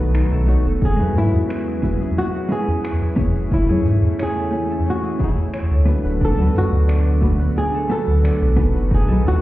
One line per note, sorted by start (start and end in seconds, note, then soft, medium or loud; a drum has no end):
0.00 0.23 B1 medium
0.00 0.79 D#3 medium
0.00 3.48 F#3 medium
0.00 0.43 A3 medium
0.00 0.78 A3 medium
0.00 0.44 B3 medium
0.00 3.47 B3 medium
0.00 0.14 D#4 medium
0.00 0.44 D#4 medium
0.00 0.44 F#4 medium
0.00 0.78 F#4 medium
0.00 0.32 A4 medium
0.00 0.45 A4 medium
0.00 0.45 B4 medium
0.00 1.36 B4 medium
0.00 0.57 D#5 medium
0.00 1.41 F#5 medium
0.14 2.84 D#4 medium
0.14 finger snap loud
0.14 shaker soft
0.32 0.57 B1 loud
0.32 0.66 A4 loud
0.32 shaker soft
0.46 0.64 A3 medium
0.46 0.65 B3 medium
0.46 0.65 D#4 medium
0.46 0.65 F#4 medium
0.46 0.66 C#5 medium
0.46 shaker medium
0.66 0.90 E1 medium
0.66 1.73 A4 medium
0.66 shaker soft
0.81 5.84 C#3 medium
0.81 2.17 C#4 medium
0.81 5.84 E4 medium
0.81 1.18 G#4 loud
0.81 kick loud
0.81 shaker soft
0.96 1.12 E2 medium
0.96 1.78 G#3 medium
0.96 1.78 C#4 medium
0.96 1.79 E4 medium
0.96 1.14 F#4 medium
0.96 low conga medium
1.01 1.80 F#4 medium
1.01 1.81 B4 medium
1.01 shaker soft
1.15 1.29 G#2 medium
1.15 2.21 E4 loud
1.15 2.34 F#4 medium
1.15 shaker medium
1.34 2.10 E2 medium
1.34 shaker soft
1.49 2.83 B4 loud
1.49 finger snap medium
1.49 shaker soft
1.67 2.00 G#4 medium
1.67 shaker soft
1.82 2.00 G#3 medium
1.82 2.00 C#4 medium
1.82 2.00 E4 medium
1.82 2.01 F#4 medium
1.82 2.01 B4 loud
1.82 kick medium
1.82 high conga medium
1.82 shaker medium
2.01 3.01 G#4 medium
2.01 shaker soft
2.17 3.51 C#4 medium
2.17 2.49 F#4 loud
2.17 shaker soft
2.34 2.50 F#4 medium
2.34 shaker soft
2.49 2.67 G#3 medium
2.49 2.67 C#4 medium
2.49 2.68 E4 medium
2.49 4.94 F#4 medium
2.49 2.68 F#4 medium
2.49 3.14 G#4 medium
2.49 2.68 B4 medium
2.49 shaker medium
2.68 2.93 E2 medium
2.68 shaker soft
2.84 4.89 B4 loud
2.84 finger snap loud
2.84 shaker soft
3.01 3.26 E2 loud
3.01 3.35 G#4 medium
3.01 shaker soft
3.16 3.64 A3 medium
3.16 3.65 C#4 medium
3.16 3.65 E4 medium
3.16 3.65 G#4 medium
3.16 3.66 C#5 loud
3.16 kick loud
3.16 shaker medium
3.35 3.60 E1 medium
3.35 3.68 G#4 medium
3.35 shaker soft
3.51 5.85 E3 medium
3.51 5.85 A3 medium
3.51 4.86 C#4 medium
3.51 4.22 E4 medium
3.51 kick loud
3.51 shaker soft
3.66 3.81 E2 medium
3.66 4.47 A3 medium
3.66 4.48 C#4 medium
3.66 4.49 E4 medium
3.66 3.84 G#4 medium
3.66 low conga medium
3.66 shaker soft
3.71 4.49 G#4 medium
3.71 4.50 C#5 loud
3.85 3.98 G#2 loud
3.85 4.43 G#4 medium
3.85 shaker medium
4.02 4.79 E2 medium
4.02 shaker soft
4.19 4.84 G#4 loud
4.19 5.53 C#5 loud
4.19 finger snap medium
4.19 shaker soft
4.37 4.70 A4 medium
4.37 shaker soft
4.51 5.15 A3 medium
4.51 5.15 C#4 medium
4.51 5.16 E4 medium
4.51 5.17 C#5 medium
4.51 5.16 G#5 medium
4.51 high conga medium
4.51 shaker medium
4.70 5.09 A4 medium
4.70 shaker soft
4.86 6.26 C#4 medium
4.86 5.23 F#4 loud
4.86 shaker soft
5.03 5.19 G#4 medium
5.03 shaker soft
5.18 5.46 A3 medium
5.18 5.46 C#4 medium
5.18 5.46 E4 medium
5.18 5.77 G#4 medium
5.18 5.47 G#4 medium
5.18 5.47 C#5 medium
5.18 kick medium
5.18 shaker medium
5.23 5.85 E4 medium
5.38 5.62 E2 medium
5.38 shaker soft
5.54 6.26 C#5 loud
5.54 finger snap medium
5.54 shaker soft
5.71 5.96 D2 medium
5.71 6.38 A4 medium
5.71 shaker soft
5.86 8.54 D3 medium
5.86 9.42 F#3 medium
5.86 6.34 A3 medium
5.86 8.54 A3 medium
5.86 6.34 B3 medium
5.86 9.42 B3 medium
5.86 6.34 D4 medium
5.86 9.42 F#4 loud
5.86 6.35 F#4 medium
5.86 6.35 B4 medium
5.86 shaker medium
6.05 6.29 D1 medium
6.05 7.05 B4 medium
6.05 shaker soft
6.20 7.55 D4 medium
6.20 kick loud
6.20 shaker soft
6.25 6.54 A4 loud
6.36 6.50 D2 medium
6.36 7.17 A3 medium
6.36 6.40 B3 medium
6.36 7.18 D4 medium
6.36 6.54 A4 loud
6.36 low conga medium
6.40 7.19 F#4 medium
6.40 7.20 B4 medium
6.40 shaker soft
6.54 6.68 F#2 medium
6.54 7.57 F#4 loud
6.54 7.74 A4 medium
6.54 shaker medium
6.72 7.49 D2 loud
6.72 shaker soft
6.88 8.23 D5 loud
6.88 finger snap loud
6.88 shaker soft
7.06 7.39 B4 medium
7.06 shaker soft
7.21 7.39 A3 medium
7.21 7.39 B3 medium
7.21 7.40 D4 medium
7.21 7.40 F#4 medium
7.21 7.40 B4 loud
7.21 kick medium
7.21 high conga medium
7.21 shaker medium
7.40 8.41 B4 medium
7.40 shaker soft
7.56 8.97 D4 medium
7.56 7.88 G#4 loud
7.56 shaker soft
7.74 7.90 A4 loud
7.74 shaker soft
7.90 8.07 A3 medium
7.90 8.07 B3 medium
7.90 8.07 D4 medium
7.90 8.08 F#4 medium
7.90 9.08 A4 medium
7.90 8.54 A4 loud
7.90 8.08 B4 medium
7.90 shaker medium
8.07 8.32 D2 medium
8.07 shaker soft
8.24 8.97 D5 loud
8.24 finger snap medium
8.24 shaker soft
8.41 8.66 B1 loud
8.41 8.75 B4 medium
8.41 shaker soft
8.56 9.42 D#3 medium
8.56 9.04 A3 medium
8.56 9.42 A3 medium
8.56 9.04 B3 medium
8.56 9.05 D#4 medium
8.56 9.05 F#4 medium
8.56 9.06 B4 medium
8.56 kick medium
8.56 shaker medium
8.75 8.99 F#1 medium
8.75 9.42 B4 medium
8.75 shaker soft
8.91 9.42 D#4 medium
8.91 9.27 G#4 loud
8.91 kick loud
8.91 shaker soft
9.07 9.20 B1 medium
9.07 9.42 A3 medium
9.07 9.11 B3 medium
9.07 9.42 D#4 medium
9.07 9.25 A4 loud
9.07 low conga medium
9.11 9.42 F#4 medium
9.11 9.42 B4 loud
9.11 shaker soft
9.25 9.38 D#2 medium
9.25 9.42 F#4 loud
9.25 9.42 A4 medium
9.25 shaker medium